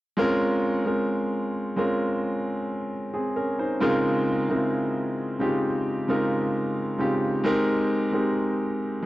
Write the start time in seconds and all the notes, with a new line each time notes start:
0.17 G#3 C4 C#4 F4 A#4
0.85 G#3 C4 C#4 F4 A#4
1.76 G#3 C4 C#4 F4 A#4
3.14 C4 G#4
3.36 C#4 A#4
3.59 D#4 C5
3.80 C#3 G#3 C4 D#4 F4 A#4
4.49 C#3 G#3 C4 D#4 E4 A#4
4.57 F4
5.39 C#3 G#3 C4 D#4 F4 G4
6.08 C#3 G#3 C4 D#4 F4 A#4
6.98 C#3 G#3 C4 D#4 F4 G4
7.44 G#3 C4 D#4 G4 A#4
8.12 G#3 C4 D#4 G4 A#4